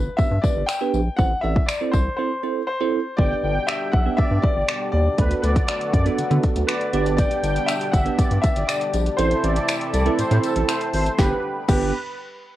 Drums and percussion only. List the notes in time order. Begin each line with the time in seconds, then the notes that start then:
0.19 kick, tambourine
0.44 kick, tambourine
0.69 finger snap, tambourine
0.94 tambourine
1.19 kick, tambourine
1.56 kick
1.69 finger snap, tambourine
1.94 kick, tambourine
3.19 kick
3.69 finger snap
3.93 kick
4.18 kick
4.44 kick
4.69 finger snap
5.18 kick, closed hi-hat
5.31 closed hi-hat
5.44 closed hi-hat
5.56 kick, closed hi-hat
5.68 finger snap, closed hi-hat
5.81 closed hi-hat
5.93 kick, closed hi-hat
6.06 closed hi-hat
6.18 closed hi-hat
6.31 closed hi-hat
6.43 kick, closed hi-hat
6.56 closed hi-hat
6.69 finger snap, closed hi-hat
6.81 closed hi-hat
6.93 closed hi-hat
7.06 closed hi-hat
7.18 kick, closed hi-hat, tambourine
7.31 closed hi-hat
7.44 closed hi-hat, tambourine
7.56 closed hi-hat
7.68 finger snap, closed hi-hat, tambourine
7.81 closed hi-hat
7.93 kick, closed hi-hat, tambourine
8.06 closed hi-hat
8.19 kick, closed hi-hat, tambourine
8.31 closed hi-hat
8.44 kick, closed hi-hat, tambourine
8.56 closed hi-hat
8.69 finger snap, closed hi-hat, tambourine
8.81 closed hi-hat
8.94 closed hi-hat, tambourine
9.06 closed hi-hat
9.19 closed hi-hat, tambourine
9.31 closed hi-hat
9.44 closed hi-hat
9.56 closed hi-hat
9.68 finger snap, closed hi-hat, tambourine
9.81 closed hi-hat
9.93 closed hi-hat, tambourine
10.06 closed hi-hat
10.19 closed hi-hat, tambourine
10.31 closed hi-hat
10.43 closed hi-hat, tambourine
10.56 closed hi-hat
10.69 finger snap, closed hi-hat, tambourine
10.81 closed hi-hat
10.93 open hi-hat, tambourine
11.06 closed hi-hat
11.18 kick, snare, tambourine
11.68 kick, crash, tambourine